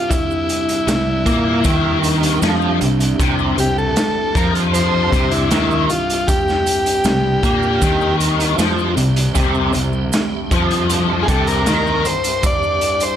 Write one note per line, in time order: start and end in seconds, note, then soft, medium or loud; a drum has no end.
0.00 9.35 C2 medium
0.00 9.35 G2 medium
0.00 13.16 G3 medium
0.00 13.16 C4 medium
0.00 0.11 F4 medium
0.00 13.16 G4 medium
0.00 13.16 E5 medium
0.09 1.99 E4 medium
0.09 kick loud
0.09 closed hi-hat medium
0.09 maracas medium
0.30 maracas soft
0.49 closed hi-hat medium
0.49 maracas medium
0.69 closed hi-hat medium
0.69 maracas soft
0.87 1.23 C2 medium
0.87 1.19 C3 medium
0.87 snare loud
0.87 closed hi-hat medium
0.87 maracas medium
1.26 1.62 A#2 medium
1.26 1.64 A#3 medium
1.26 kick loud
1.26 closed hi-hat medium
1.26 maracas medium
1.64 2.38 D#2 medium
1.64 2.41 D#3 loud
1.64 kick loud
1.64 closed hi-hat medium
1.64 maracas medium
2.03 closed hi-hat medium
2.03 maracas medium
2.23 closed hi-hat medium
2.42 2.78 F2 medium
2.42 2.80 F3 loud
2.42 snare loud
2.42 closed hi-hat medium
2.42 maracas medium
2.61 maracas soft
2.81 3.17 C2 medium
2.81 3.12 C3 medium
2.81 closed hi-hat medium
2.81 maracas medium
3.00 closed hi-hat medium
3.19 3.55 C2 medium
3.19 3.57 C3 medium
3.19 kick loud
3.19 closed hi-hat medium
3.19 maracas medium
3.39 maracas soft
3.58 3.94 C2 medium
3.58 3.89 C3 medium
3.58 3.77 G4 medium
3.58 closed hi-hat medium
3.58 maracas medium
3.78 4.37 A4 medium
3.78 maracas soft
3.96 snare loud
3.96 closed hi-hat medium
3.96 maracas medium
4.35 5.08 F2 medium
4.35 5.11 F3 loud
4.35 4.54 A#4 medium
4.35 kick loud
4.35 closed hi-hat medium
4.35 maracas medium
4.55 closed hi-hat medium
4.73 5.33 C5 loud
4.73 closed hi-hat medium
4.73 maracas medium
5.12 5.48 C2 medium
5.12 5.50 C3 loud
5.12 kick loud
5.12 closed hi-hat medium
5.12 maracas medium
5.31 5.85 E4 medium
5.31 closed hi-hat medium
5.51 5.87 D#2 medium
5.51 5.88 D#3 loud
5.51 snare loud
5.51 closed hi-hat medium
5.51 maracas medium
5.71 maracas soft
5.90 6.29 F4 medium
5.90 closed hi-hat medium
5.90 maracas medium
6.10 closed hi-hat medium
6.27 8.16 G4 medium
6.27 kick loud
6.27 closed hi-hat medium
6.27 maracas medium
6.48 snare soft
6.48 maracas soft
6.67 closed hi-hat medium
6.67 maracas medium
6.86 closed hi-hat medium
7.04 7.41 C2 medium
7.04 7.36 C3 medium
7.04 snare loud
7.04 closed hi-hat medium
7.04 maracas medium
7.43 7.79 A#2 medium
7.43 7.81 A#3 loud
7.43 kick loud
7.43 closed hi-hat medium
7.43 maracas medium
7.63 maracas soft
7.82 8.55 D#2 medium
7.82 8.58 D#3 loud
7.82 kick loud
7.82 closed hi-hat medium
7.82 maracas loud
8.01 maracas soft
8.20 closed hi-hat medium
8.20 maracas medium
8.40 closed hi-hat medium
8.58 8.94 F2 medium
8.58 8.96 F3 loud
8.58 snare loud
8.58 closed hi-hat medium
8.58 maracas loud
8.78 maracas soft
8.96 9.33 C2 medium
8.96 9.28 C3 medium
8.96 closed hi-hat medium
8.96 maracas medium
9.16 closed hi-hat medium
9.16 maracas soft
9.35 9.72 C2 medium
9.35 13.16 C2 medium
9.35 13.16 G2 medium
9.35 9.73 C3 loud
9.35 kick loud
9.35 closed hi-hat medium
9.35 maracas loud
9.55 maracas soft
9.73 10.10 C2 medium
9.73 10.05 C3 medium
9.73 closed hi-hat medium
9.73 maracas medium
9.93 maracas soft
10.13 snare loud
10.13 closed hi-hat medium
10.13 maracas loud
10.51 11.24 F2 medium
10.51 11.28 F3 medium
10.51 kick loud
10.51 closed hi-hat medium
10.51 maracas medium
10.71 closed hi-hat medium
10.90 closed hi-hat medium
10.90 maracas loud
11.22 11.28 G#4 medium
11.28 11.64 C2 loud
11.28 11.66 C3 loud
11.28 11.49 A4 medium
11.28 kick loud
11.28 closed hi-hat medium
11.28 maracas medium
11.47 12.07 A#4 medium
11.47 closed hi-hat medium
11.66 12.03 D#2 medium
11.66 12.04 D#3 loud
11.66 snare loud
11.66 closed hi-hat medium
11.66 maracas loud
11.87 maracas soft
12.05 12.45 C5 medium
12.05 closed hi-hat medium
12.05 maracas medium
12.24 closed hi-hat medium
12.43 13.04 D5 loud
12.43 kick loud
12.43 closed hi-hat medium
12.43 maracas loud
12.63 maracas soft
12.81 closed hi-hat medium
12.81 maracas medium
13.00 13.16 C5 medium
13.00 closed hi-hat medium
13.00 maracas soft